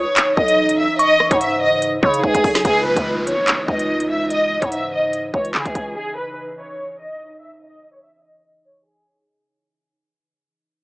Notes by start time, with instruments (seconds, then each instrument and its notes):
Already playing: ambient pad C#3 E3 D#4, violin section C#5, synth bell D#6
0.17 clap, closed hi-hat
0.37 808-style bass B1, violin section D#5, kick
0.48 closed hi-hat
0.69 closed hi-hat
0.79 violin section E5
0.99 violin section D#5, synth bell C#6, closed hi-hat
1.20 cross-stick
1.31 808-style bass G#2, violin section C#5, kick, closed hi-hat
1.41 violin section E5, closed hi-hat
1.61 violin section D#5
1.82 closed hi-hat
2.03 808-style bass C#3, violin section C#5, kick
2.14 closed hi-hat
2.23 808-style bass C#2, violin section G#4, kick
2.34 808-style bass C#2, kick, closed hi-hat
2.44 808-style bass B1, kick, open hi-hat
2.55 snare
2.65 808-style bass C#2, ambient pad C#3 E3 D#4, violin section G#4, kick, closed hi-hat, downlifter
2.85 violin section B4
2.96 808-style bass C#2, kick, closed hi-hat
3.27 violin section C#5, closed hi-hat
3.48 clap, closed hi-hat
3.68 808-style bass C#2, violin section D#5, kick
3.79 closed hi-hat
4.00 closed hi-hat
4.10 violin section E5
4.30 violin section D#5, closed hi-hat
4.62 808-style bass G#2, violin section C#5, kick, closed hi-hat
4.72 violin section E5, closed hi-hat
4.93 violin section D#5
5.13 closed hi-hat
5.34 808-style bass C#2, violin section C#5, kick
5.45 closed hi-hat
5.54 808-style bass C#3, violin section G#4, clap
5.65 808-style bass C#2, kick, closed hi-hat
5.75 808-style bass C#2, kick, closed hi-hat
5.96 violin section G#4
6.16 violin section B4
6.58 violin section C#5
6.99 violin section D#5
7.41 violin section E5
7.61 violin section D#5
7.93 violin section C#5
8.03 violin section E5
8.23 violin section D#5
8.65 violin section C#5
8.86 violin section G#4